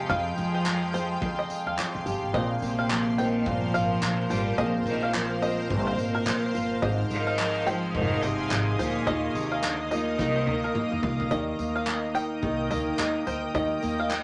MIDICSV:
0, 0, Header, 1, 9, 480
1, 0, Start_track
1, 0, Key_signature, -3, "major"
1, 0, Tempo, 560748
1, 82, Time_signature, 4, 2, 24, 8
1, 12184, End_track
2, 0, Start_track
2, 0, Title_t, "Ambient pad"
2, 0, Program_c, 0, 92
2, 0, Note_on_c, 0, 56, 84
2, 0, Note_on_c, 0, 77, 66
2, 0, Note_on_c, 0, 79, 69
2, 0, Note_on_c, 0, 84, 88
2, 1968, Note_off_c, 0, 79, 0
2, 1971, Note_off_c, 0, 56, 0
2, 2006, Note_on_c, 0, 72, 64
2, 2007, Note_on_c, 0, 70, 75
2, 5809, Note_off_c, 0, 72, 0
2, 5810, Note_off_c, 0, 70, 0
2, 5847, Note_on_c, 0, 75, 67
2, 5851, Note_on_c, 0, 68, 82
2, 7730, Note_off_c, 0, 84, 0
2, 7746, Note_off_c, 0, 68, 0
2, 7762, Note_on_c, 0, 87, 83
2, 7763, Note_on_c, 0, 70, 74
2, 9646, Note_off_c, 0, 77, 0
2, 9648, Note_off_c, 0, 75, 0
2, 9661, Note_off_c, 0, 87, 0
2, 9662, Note_off_c, 0, 70, 0
2, 9686, Note_on_c, 0, 70, 75
2, 9686, Note_on_c, 0, 87, 85
2, 9688, Note_on_c, 0, 75, 66
2, 9689, Note_on_c, 0, 79, 63
2, 12184, Note_off_c, 0, 70, 0
2, 12184, Note_off_c, 0, 75, 0
2, 12184, Note_off_c, 0, 79, 0
2, 12184, Note_off_c, 0, 87, 0
2, 12184, End_track
3, 0, Start_track
3, 0, Title_t, "Five-string banjo"
3, 0, Program_c, 1, 105
3, 81, Note_on_c, 1, 77, 100
3, 218, Note_off_c, 1, 77, 0
3, 466, Note_on_c, 1, 72, 70
3, 558, Note_off_c, 1, 72, 0
3, 805, Note_on_c, 1, 72, 87
3, 1032, Note_off_c, 1, 72, 0
3, 1188, Note_on_c, 1, 75, 64
3, 1279, Note_off_c, 1, 75, 0
3, 1429, Note_on_c, 1, 77, 66
3, 1519, Note_off_c, 1, 77, 0
3, 2004, Note_on_c, 1, 75, 90
3, 2140, Note_off_c, 1, 75, 0
3, 2385, Note_on_c, 1, 77, 72
3, 2477, Note_off_c, 1, 77, 0
3, 2725, Note_on_c, 1, 79, 83
3, 3085, Note_off_c, 1, 79, 0
3, 3203, Note_on_c, 1, 77, 86
3, 3340, Note_off_c, 1, 77, 0
3, 3684, Note_on_c, 1, 72, 62
3, 3820, Note_off_c, 1, 72, 0
3, 3921, Note_on_c, 1, 75, 107
3, 4058, Note_off_c, 1, 75, 0
3, 4304, Note_on_c, 1, 77, 66
3, 4396, Note_off_c, 1, 77, 0
3, 4643, Note_on_c, 1, 75, 85
3, 4870, Note_off_c, 1, 75, 0
3, 5025, Note_on_c, 1, 72, 72
3, 5117, Note_off_c, 1, 72, 0
3, 5261, Note_on_c, 1, 70, 70
3, 5355, Note_off_c, 1, 70, 0
3, 5840, Note_on_c, 1, 75, 86
3, 5978, Note_off_c, 1, 75, 0
3, 6223, Note_on_c, 1, 77, 70
3, 6315, Note_off_c, 1, 77, 0
3, 6562, Note_on_c, 1, 79, 85
3, 6922, Note_off_c, 1, 79, 0
3, 7043, Note_on_c, 1, 75, 75
3, 7179, Note_off_c, 1, 75, 0
3, 7525, Note_on_c, 1, 72, 66
3, 7660, Note_off_c, 1, 72, 0
3, 7763, Note_on_c, 1, 75, 105
3, 7898, Note_off_c, 1, 75, 0
3, 8145, Note_on_c, 1, 77, 61
3, 8236, Note_off_c, 1, 77, 0
3, 8485, Note_on_c, 1, 75, 83
3, 8711, Note_off_c, 1, 75, 0
3, 8867, Note_on_c, 1, 72, 66
3, 8957, Note_off_c, 1, 72, 0
3, 9109, Note_on_c, 1, 70, 66
3, 9198, Note_off_c, 1, 70, 0
3, 9681, Note_on_c, 1, 75, 96
3, 9817, Note_off_c, 1, 75, 0
3, 10063, Note_on_c, 1, 77, 72
3, 10154, Note_off_c, 1, 77, 0
3, 10398, Note_on_c, 1, 79, 78
3, 10760, Note_off_c, 1, 79, 0
3, 10877, Note_on_c, 1, 75, 83
3, 11015, Note_off_c, 1, 75, 0
3, 11359, Note_on_c, 1, 72, 66
3, 11496, Note_off_c, 1, 72, 0
3, 11598, Note_on_c, 1, 75, 91
3, 11735, Note_off_c, 1, 75, 0
3, 11980, Note_on_c, 1, 77, 67
3, 12073, Note_off_c, 1, 77, 0
3, 12184, End_track
4, 0, Start_track
4, 0, Title_t, "Upright piano"
4, 0, Program_c, 2, 0
4, 1994, Note_on_c, 2, 58, 84
4, 1999, Note_on_c, 2, 60, 80
4, 2006, Note_on_c, 2, 65, 78
4, 2011, Note_on_c, 2, 72, 92
4, 2169, Control_c, 2, 64, 127
4, 2463, Note_off_c, 2, 58, 0
4, 2465, Note_off_c, 2, 60, 0
4, 2468, Note_off_c, 2, 65, 0
4, 2471, Note_off_c, 2, 72, 0
4, 2717, Note_on_c, 2, 58, 66
4, 2721, Note_on_c, 2, 60, 57
4, 2726, Note_on_c, 2, 65, 65
4, 2734, Note_on_c, 2, 72, 78
4, 2891, Note_off_c, 2, 58, 0
4, 2893, Note_off_c, 2, 60, 0
4, 2895, Note_off_c, 2, 65, 0
4, 2899, Note_off_c, 2, 72, 0
4, 2956, Note_on_c, 2, 58, 72
4, 2962, Note_on_c, 2, 60, 64
4, 2966, Note_on_c, 2, 65, 61
4, 2973, Note_on_c, 2, 74, 70
4, 3594, Note_off_c, 2, 58, 0
4, 3597, Note_off_c, 2, 60, 0
4, 3599, Note_off_c, 2, 65, 0
4, 3603, Note_off_c, 2, 74, 0
4, 3912, Note_on_c, 2, 58, 74
4, 3920, Note_on_c, 2, 60, 68
4, 3925, Note_on_c, 2, 65, 68
4, 3929, Note_on_c, 2, 68, 89
4, 4381, Note_off_c, 2, 58, 0
4, 4385, Note_off_c, 2, 60, 0
4, 4388, Note_off_c, 2, 65, 0
4, 4390, Note_off_c, 2, 68, 0
4, 4632, Note_on_c, 2, 58, 70
4, 4640, Note_on_c, 2, 60, 67
4, 4645, Note_on_c, 2, 65, 60
4, 4652, Note_on_c, 2, 75, 79
4, 4808, Note_off_c, 2, 58, 0
4, 4812, Note_off_c, 2, 60, 0
4, 4814, Note_off_c, 2, 65, 0
4, 4818, Note_off_c, 2, 75, 0
4, 4872, Note_on_c, 2, 58, 71
4, 4877, Note_on_c, 2, 60, 62
4, 4885, Note_on_c, 2, 65, 65
4, 4891, Note_on_c, 2, 71, 59
4, 4946, Note_on_c, 2, 72, 70
4, 4953, Note_off_c, 2, 71, 0
4, 5512, Note_off_c, 2, 58, 0
4, 5514, Note_off_c, 2, 60, 0
4, 5518, Note_off_c, 2, 65, 0
4, 5549, Note_off_c, 2, 72, 0
4, 5836, Note_on_c, 2, 56, 94
4, 5843, Note_on_c, 2, 63, 78
4, 5848, Note_on_c, 2, 65, 79
4, 5852, Control_c, 2, 64, 0
4, 5854, Note_on_c, 2, 72, 91
4, 5996, Control_c, 2, 64, 127
4, 6303, Note_off_c, 2, 56, 0
4, 6306, Note_off_c, 2, 63, 0
4, 6309, Note_off_c, 2, 65, 0
4, 6312, Note_off_c, 2, 72, 0
4, 6555, Note_on_c, 2, 56, 73
4, 6559, Note_on_c, 2, 63, 64
4, 6567, Note_on_c, 2, 65, 70
4, 6571, Note_on_c, 2, 72, 76
4, 6729, Note_off_c, 2, 56, 0
4, 6731, Note_off_c, 2, 63, 0
4, 6735, Note_off_c, 2, 65, 0
4, 6737, Note_off_c, 2, 72, 0
4, 6796, Note_on_c, 2, 56, 70
4, 6802, Note_on_c, 2, 63, 64
4, 6806, Note_on_c, 2, 65, 66
4, 6811, Note_on_c, 2, 72, 80
4, 7433, Note_off_c, 2, 56, 0
4, 7436, Note_off_c, 2, 63, 0
4, 7438, Note_off_c, 2, 65, 0
4, 7441, Note_off_c, 2, 72, 0
4, 7757, Note_on_c, 2, 58, 72
4, 7763, Note_on_c, 2, 63, 62
4, 7768, Note_on_c, 2, 65, 66
4, 7772, Control_c, 2, 64, 0
4, 7774, Note_on_c, 2, 75, 79
4, 7900, Control_c, 2, 64, 127
4, 8223, Note_off_c, 2, 58, 0
4, 8226, Note_off_c, 2, 63, 0
4, 8228, Note_off_c, 2, 65, 0
4, 8231, Note_off_c, 2, 75, 0
4, 8482, Note_on_c, 2, 58, 75
4, 8487, Note_on_c, 2, 63, 61
4, 8492, Note_on_c, 2, 65, 69
4, 8498, Note_on_c, 2, 75, 70
4, 8652, Note_off_c, 2, 58, 0
4, 8654, Note_off_c, 2, 63, 0
4, 8657, Note_off_c, 2, 65, 0
4, 8660, Note_off_c, 2, 75, 0
4, 8718, Note_on_c, 2, 58, 61
4, 8724, Note_on_c, 2, 63, 59
4, 8730, Note_on_c, 2, 65, 58
4, 8736, Note_on_c, 2, 75, 77
4, 9354, Note_off_c, 2, 58, 0
4, 9357, Note_off_c, 2, 63, 0
4, 9360, Note_off_c, 2, 65, 0
4, 9363, Note_off_c, 2, 75, 0
4, 9679, Note_on_c, 2, 58, 87
4, 9685, Note_on_c, 2, 63, 72
4, 9689, Control_c, 2, 64, 0
4, 9691, Note_on_c, 2, 67, 77
4, 9697, Note_on_c, 2, 74, 75
4, 9752, Note_on_c, 2, 75, 78
4, 9755, Note_off_c, 2, 74, 0
4, 9829, Control_c, 2, 64, 127
4, 10314, Note_off_c, 2, 58, 0
4, 10317, Note_off_c, 2, 63, 0
4, 10320, Note_off_c, 2, 67, 0
4, 10351, Note_off_c, 2, 75, 0
4, 10629, Note_on_c, 2, 58, 70
4, 10635, Note_on_c, 2, 63, 65
4, 10640, Note_on_c, 2, 67, 74
4, 10646, Note_on_c, 2, 75, 77
4, 10954, Note_off_c, 2, 58, 0
4, 10957, Note_off_c, 2, 63, 0
4, 10960, Note_off_c, 2, 67, 0
4, 10963, Note_off_c, 2, 75, 0
4, 11110, Note_on_c, 2, 58, 84
4, 11116, Note_on_c, 2, 63, 62
4, 11122, Note_on_c, 2, 67, 69
4, 11127, Note_on_c, 2, 75, 89
4, 11435, Note_off_c, 2, 58, 0
4, 11438, Note_off_c, 2, 63, 0
4, 11441, Note_off_c, 2, 67, 0
4, 11443, Note_off_c, 2, 75, 0
4, 11591, Note_on_c, 2, 58, 77
4, 11598, Note_on_c, 2, 63, 73
4, 11603, Note_on_c, 2, 67, 85
4, 11607, Note_on_c, 2, 75, 102
4, 12184, Note_off_c, 2, 58, 0
4, 12184, Note_off_c, 2, 63, 0
4, 12184, Note_off_c, 2, 67, 0
4, 12184, Note_off_c, 2, 75, 0
4, 12184, End_track
5, 0, Start_track
5, 0, Title_t, "Steel-string acoustic guitar"
5, 0, Program_c, 3, 25
5, 0, Note_on_c, 3, 53, 65
5, 0, Note_on_c, 3, 56, 61
5, 0, Note_on_c, 3, 60, 54
5, 0, Note_on_c, 3, 67, 77
5, 83, Note_on_c, 3, 41, 83
5, 319, Note_off_c, 3, 56, 0
5, 329, Note_on_c, 3, 56, 55
5, 562, Note_off_c, 3, 53, 0
5, 565, Note_on_c, 3, 53, 72
5, 802, Note_off_c, 3, 60, 0
5, 806, Note_on_c, 3, 60, 53
5, 1030, Note_off_c, 3, 41, 0
5, 1040, Note_on_c, 3, 41, 76
5, 1529, Note_off_c, 3, 53, 0
5, 1532, Note_on_c, 3, 53, 60
5, 1751, Note_off_c, 3, 67, 0
5, 1761, Note_on_c, 3, 67, 68
5, 2001, Note_off_c, 3, 41, 0
5, 2005, Note_on_c, 3, 46, 88
5, 2059, Note_off_c, 3, 67, 0
5, 2064, Note_off_c, 3, 56, 0
5, 2250, Note_on_c, 3, 58, 54
5, 2276, Note_off_c, 3, 60, 0
5, 2481, Note_off_c, 3, 53, 0
5, 2484, Note_on_c, 3, 53, 67
5, 2724, Note_on_c, 3, 60, 58
5, 2950, Note_off_c, 3, 46, 0
5, 2960, Note_on_c, 3, 46, 76
5, 3438, Note_off_c, 3, 53, 0
5, 3442, Note_on_c, 3, 53, 62
5, 3680, Note_on_c, 3, 65, 73
5, 3911, Note_off_c, 3, 46, 0
5, 3921, Note_on_c, 3, 46, 83
5, 4146, Note_off_c, 3, 58, 0
5, 4157, Note_on_c, 3, 58, 61
5, 4396, Note_off_c, 3, 53, 0
5, 4399, Note_on_c, 3, 53, 75
5, 4641, Note_off_c, 3, 60, 0
5, 4644, Note_on_c, 3, 60, 51
5, 4871, Note_off_c, 3, 46, 0
5, 4881, Note_on_c, 3, 46, 76
5, 5353, Note_off_c, 3, 53, 0
5, 5357, Note_on_c, 3, 53, 68
5, 5596, Note_off_c, 3, 65, 0
5, 5599, Note_on_c, 3, 65, 65
5, 5840, Note_on_c, 3, 44, 83
5, 5841, Note_off_c, 3, 46, 0
5, 5897, Note_off_c, 3, 58, 0
5, 6079, Note_on_c, 3, 56, 57
5, 6313, Note_off_c, 3, 53, 0
5, 6316, Note_on_c, 3, 53, 70
5, 6554, Note_off_c, 3, 60, 0
5, 6558, Note_on_c, 3, 60, 63
5, 6792, Note_off_c, 3, 44, 0
5, 6802, Note_on_c, 3, 44, 80
5, 7281, Note_off_c, 3, 53, 0
5, 7284, Note_on_c, 3, 53, 65
5, 7523, Note_off_c, 3, 65, 0
5, 7526, Note_on_c, 3, 65, 74
5, 7763, Note_off_c, 3, 53, 0
5, 7767, Note_on_c, 3, 51, 91
5, 7817, Note_off_c, 3, 56, 0
5, 7817, Note_off_c, 3, 60, 0
5, 7819, Note_off_c, 3, 44, 0
5, 8003, Note_on_c, 3, 58, 55
5, 8237, Note_off_c, 3, 58, 0
5, 8241, Note_on_c, 3, 58, 70
5, 8482, Note_on_c, 3, 63, 56
5, 8508, Note_off_c, 3, 65, 0
5, 8715, Note_off_c, 3, 51, 0
5, 8719, Note_on_c, 3, 51, 69
5, 9196, Note_off_c, 3, 58, 0
5, 9199, Note_on_c, 3, 58, 69
5, 9439, Note_on_c, 3, 65, 68
5, 9678, Note_off_c, 3, 51, 0
5, 9682, Note_on_c, 3, 51, 81
5, 9737, Note_off_c, 3, 65, 0
5, 9915, Note_off_c, 3, 58, 0
5, 9918, Note_on_c, 3, 58, 53
5, 10141, Note_off_c, 3, 58, 0
5, 10151, Note_on_c, 3, 58, 64
5, 10387, Note_off_c, 3, 63, 0
5, 10391, Note_on_c, 3, 63, 52
5, 10623, Note_off_c, 3, 51, 0
5, 10634, Note_on_c, 3, 51, 73
5, 10868, Note_off_c, 3, 58, 0
5, 10878, Note_on_c, 3, 58, 57
5, 11102, Note_off_c, 3, 58, 0
5, 11112, Note_on_c, 3, 58, 62
5, 11345, Note_off_c, 3, 63, 0
5, 11355, Note_on_c, 3, 63, 62
5, 11584, Note_off_c, 3, 51, 0
5, 11594, Note_on_c, 3, 51, 71
5, 11823, Note_off_c, 3, 58, 0
5, 11834, Note_on_c, 3, 58, 51
5, 12061, Note_off_c, 3, 58, 0
5, 12071, Note_on_c, 3, 58, 69
5, 12184, Note_off_c, 3, 51, 0
5, 12184, Note_off_c, 3, 58, 0
5, 12184, Note_off_c, 3, 63, 0
5, 12184, End_track
6, 0, Start_track
6, 0, Title_t, "Cello"
6, 0, Program_c, 4, 42
6, 0, Note_on_c, 4, 48, 85
6, 86, Note_on_c, 4, 53, 123
6, 99, Note_off_c, 4, 48, 0
6, 1525, Note_off_c, 4, 53, 0
6, 2248, Note_on_c, 4, 48, 84
6, 2730, Note_on_c, 4, 51, 90
6, 2743, Note_off_c, 4, 48, 0
6, 2967, Note_on_c, 4, 53, 118
6, 2979, Note_off_c, 4, 51, 0
6, 3693, Note_on_c, 4, 55, 101
6, 3706, Note_off_c, 4, 53, 0
6, 3928, Note_off_c, 4, 55, 0
6, 3935, Note_on_c, 4, 53, 103
6, 4040, Note_off_c, 4, 53, 0
6, 4179, Note_on_c, 4, 51, 97
6, 4395, Note_off_c, 4, 51, 0
6, 4420, Note_on_c, 4, 53, 94
6, 5097, Note_off_c, 4, 53, 0
6, 6098, Note_on_c, 4, 51, 114
6, 6576, Note_on_c, 4, 53, 116
6, 6589, Note_off_c, 4, 51, 0
6, 6816, Note_on_c, 4, 51, 118
6, 6829, Note_off_c, 4, 53, 0
6, 7049, Note_on_c, 4, 48, 100
6, 7061, Note_off_c, 4, 51, 0
6, 7525, Note_off_c, 4, 48, 0
6, 7534, Note_on_c, 4, 46, 102
6, 8014, Note_on_c, 4, 48, 90
6, 8027, Note_off_c, 4, 46, 0
6, 8247, Note_off_c, 4, 48, 0
6, 8253, Note_on_c, 4, 50, 87
6, 8358, Note_off_c, 4, 50, 0
6, 8495, Note_on_c, 4, 51, 109
6, 9413, Note_off_c, 4, 51, 0
6, 12184, End_track
7, 0, Start_track
7, 0, Title_t, "Upright bass"
7, 0, Program_c, 5, 32
7, 82, Note_on_c, 5, 41, 126
7, 279, Note_off_c, 5, 41, 0
7, 327, Note_on_c, 5, 41, 89
7, 1011, Note_off_c, 5, 41, 0
7, 1046, Note_on_c, 5, 38, 81
7, 1241, Note_off_c, 5, 38, 0
7, 1425, Note_on_c, 5, 39, 80
7, 1504, Note_off_c, 5, 39, 0
7, 1669, Note_on_c, 5, 41, 82
7, 1746, Note_off_c, 5, 41, 0
7, 1762, Note_on_c, 5, 31, 80
7, 1880, Note_off_c, 5, 31, 0
7, 1903, Note_on_c, 5, 32, 79
7, 1983, Note_off_c, 5, 32, 0
7, 2005, Note_on_c, 5, 34, 116
7, 2201, Note_off_c, 5, 34, 0
7, 2243, Note_on_c, 5, 34, 93
7, 2928, Note_off_c, 5, 34, 0
7, 2967, Note_on_c, 5, 31, 95
7, 3162, Note_off_c, 5, 31, 0
7, 3204, Note_on_c, 5, 32, 72
7, 3400, Note_off_c, 5, 32, 0
7, 3445, Note_on_c, 5, 34, 90
7, 3641, Note_off_c, 5, 34, 0
7, 3683, Note_on_c, 5, 32, 70
7, 3879, Note_off_c, 5, 32, 0
7, 3924, Note_on_c, 5, 34, 112
7, 4120, Note_off_c, 5, 34, 0
7, 4157, Note_on_c, 5, 34, 99
7, 4845, Note_off_c, 5, 34, 0
7, 4883, Note_on_c, 5, 31, 111
7, 5080, Note_off_c, 5, 31, 0
7, 5121, Note_on_c, 5, 32, 75
7, 5318, Note_off_c, 5, 32, 0
7, 5360, Note_on_c, 5, 34, 98
7, 5558, Note_off_c, 5, 34, 0
7, 5600, Note_on_c, 5, 31, 72
7, 5798, Note_off_c, 5, 31, 0
7, 5843, Note_on_c, 5, 32, 109
7, 6039, Note_off_c, 5, 32, 0
7, 6082, Note_on_c, 5, 32, 85
7, 6768, Note_off_c, 5, 32, 0
7, 6805, Note_on_c, 5, 29, 90
7, 7000, Note_off_c, 5, 29, 0
7, 7042, Note_on_c, 5, 31, 81
7, 7239, Note_off_c, 5, 31, 0
7, 7280, Note_on_c, 5, 32, 87
7, 7477, Note_off_c, 5, 32, 0
7, 7522, Note_on_c, 5, 38, 88
7, 7718, Note_off_c, 5, 38, 0
7, 7764, Note_on_c, 5, 39, 120
7, 7959, Note_off_c, 5, 39, 0
7, 8002, Note_on_c, 5, 39, 94
7, 8687, Note_off_c, 5, 39, 0
7, 8724, Note_on_c, 5, 36, 99
7, 8919, Note_off_c, 5, 36, 0
7, 8963, Note_on_c, 5, 38, 74
7, 9159, Note_off_c, 5, 38, 0
7, 9346, Note_on_c, 5, 39, 80
7, 9424, Note_off_c, 5, 39, 0
7, 9441, Note_on_c, 5, 36, 79
7, 9559, Note_off_c, 5, 36, 0
7, 9585, Note_on_c, 5, 38, 92
7, 9663, Note_off_c, 5, 38, 0
7, 9681, Note_on_c, 5, 39, 109
7, 9877, Note_off_c, 5, 39, 0
7, 9919, Note_on_c, 5, 39, 83
7, 10605, Note_off_c, 5, 39, 0
7, 10639, Note_on_c, 5, 36, 94
7, 10836, Note_off_c, 5, 36, 0
7, 10877, Note_on_c, 5, 38, 91
7, 11075, Note_off_c, 5, 38, 0
7, 11114, Note_on_c, 5, 39, 91
7, 11313, Note_off_c, 5, 39, 0
7, 11355, Note_on_c, 5, 38, 78
7, 11553, Note_off_c, 5, 38, 0
7, 11595, Note_on_c, 5, 39, 112
7, 11793, Note_off_c, 5, 39, 0
7, 11840, Note_on_c, 5, 39, 81
7, 12184, Note_off_c, 5, 39, 0
7, 12184, End_track
8, 0, Start_track
8, 0, Title_t, "Muted upright bass strokes"
8, 1283, Note_on_c, 9, 29, 42
8, 1369, Note_off_c, 9, 29, 0
8, 12184, End_track
9, 0, Start_track
9, 0, Title_t, "Drums"
9, 83, Note_on_c, 9, 36, 84
9, 169, Note_off_c, 9, 36, 0
9, 322, Note_on_c, 9, 54, 57
9, 408, Note_off_c, 9, 54, 0
9, 565, Note_on_c, 9, 39, 106
9, 650, Note_off_c, 9, 39, 0
9, 806, Note_on_c, 9, 54, 58
9, 891, Note_off_c, 9, 54, 0
9, 1044, Note_on_c, 9, 36, 120
9, 1129, Note_off_c, 9, 36, 0
9, 1284, Note_on_c, 9, 54, 66
9, 1369, Note_off_c, 9, 54, 0
9, 1529, Note_on_c, 9, 39, 119
9, 1615, Note_off_c, 9, 39, 0
9, 1767, Note_on_c, 9, 54, 64
9, 1853, Note_off_c, 9, 54, 0
9, 2005, Note_on_c, 9, 36, 97
9, 2090, Note_off_c, 9, 36, 0
9, 2245, Note_on_c, 9, 54, 54
9, 2330, Note_off_c, 9, 54, 0
9, 2487, Note_on_c, 9, 39, 116
9, 2572, Note_off_c, 9, 39, 0
9, 2728, Note_on_c, 9, 54, 56
9, 2813, Note_off_c, 9, 54, 0
9, 2964, Note_on_c, 9, 36, 127
9, 3049, Note_off_c, 9, 36, 0
9, 3205, Note_on_c, 9, 54, 63
9, 3290, Note_off_c, 9, 54, 0
9, 3448, Note_on_c, 9, 39, 114
9, 3534, Note_off_c, 9, 39, 0
9, 3685, Note_on_c, 9, 54, 69
9, 3771, Note_off_c, 9, 54, 0
9, 3924, Note_on_c, 9, 36, 92
9, 4010, Note_off_c, 9, 36, 0
9, 4165, Note_on_c, 9, 54, 55
9, 4251, Note_off_c, 9, 54, 0
9, 4404, Note_on_c, 9, 39, 114
9, 4490, Note_off_c, 9, 39, 0
9, 4645, Note_on_c, 9, 54, 51
9, 4730, Note_off_c, 9, 54, 0
9, 4883, Note_on_c, 9, 36, 127
9, 4969, Note_off_c, 9, 36, 0
9, 5124, Note_on_c, 9, 54, 65
9, 5209, Note_off_c, 9, 54, 0
9, 5366, Note_on_c, 9, 39, 122
9, 5452, Note_off_c, 9, 39, 0
9, 5604, Note_on_c, 9, 54, 62
9, 5690, Note_off_c, 9, 54, 0
9, 5843, Note_on_c, 9, 36, 96
9, 5928, Note_off_c, 9, 36, 0
9, 6081, Note_on_c, 9, 54, 56
9, 6167, Note_off_c, 9, 54, 0
9, 6326, Note_on_c, 9, 39, 105
9, 6412, Note_off_c, 9, 39, 0
9, 6568, Note_on_c, 9, 54, 54
9, 6654, Note_off_c, 9, 54, 0
9, 6802, Note_on_c, 9, 36, 118
9, 6888, Note_off_c, 9, 36, 0
9, 7040, Note_on_c, 9, 54, 65
9, 7126, Note_off_c, 9, 54, 0
9, 7287, Note_on_c, 9, 39, 127
9, 7372, Note_off_c, 9, 39, 0
9, 7526, Note_on_c, 9, 54, 65
9, 7612, Note_off_c, 9, 54, 0
9, 7764, Note_on_c, 9, 36, 99
9, 7850, Note_off_c, 9, 36, 0
9, 8005, Note_on_c, 9, 54, 67
9, 8090, Note_off_c, 9, 54, 0
9, 8248, Note_on_c, 9, 39, 114
9, 8334, Note_off_c, 9, 39, 0
9, 8486, Note_on_c, 9, 54, 63
9, 8572, Note_off_c, 9, 54, 0
9, 8723, Note_on_c, 9, 36, 110
9, 8724, Note_on_c, 9, 38, 63
9, 8809, Note_off_c, 9, 36, 0
9, 8809, Note_off_c, 9, 38, 0
9, 8964, Note_on_c, 9, 48, 78
9, 9050, Note_off_c, 9, 48, 0
9, 9204, Note_on_c, 9, 47, 89
9, 9290, Note_off_c, 9, 47, 0
9, 9349, Note_on_c, 9, 45, 71
9, 9434, Note_off_c, 9, 45, 0
9, 9443, Note_on_c, 9, 43, 107
9, 9528, Note_off_c, 9, 43, 0
9, 9587, Note_on_c, 9, 43, 82
9, 9673, Note_off_c, 9, 43, 0
9, 9681, Note_on_c, 9, 36, 84
9, 9767, Note_off_c, 9, 36, 0
9, 9921, Note_on_c, 9, 54, 58
9, 10006, Note_off_c, 9, 54, 0
9, 10161, Note_on_c, 9, 39, 100
9, 10246, Note_off_c, 9, 39, 0
9, 10401, Note_on_c, 9, 54, 55
9, 10487, Note_off_c, 9, 54, 0
9, 10638, Note_on_c, 9, 36, 111
9, 10723, Note_off_c, 9, 36, 0
9, 10877, Note_on_c, 9, 54, 61
9, 10963, Note_off_c, 9, 54, 0
9, 11120, Note_on_c, 9, 39, 112
9, 11206, Note_off_c, 9, 39, 0
9, 11357, Note_on_c, 9, 54, 60
9, 11443, Note_off_c, 9, 54, 0
9, 11595, Note_on_c, 9, 36, 94
9, 11681, Note_off_c, 9, 36, 0
9, 11834, Note_on_c, 9, 54, 58
9, 11920, Note_off_c, 9, 54, 0
9, 12076, Note_on_c, 9, 39, 96
9, 12161, Note_off_c, 9, 39, 0
9, 12184, End_track
0, 0, End_of_file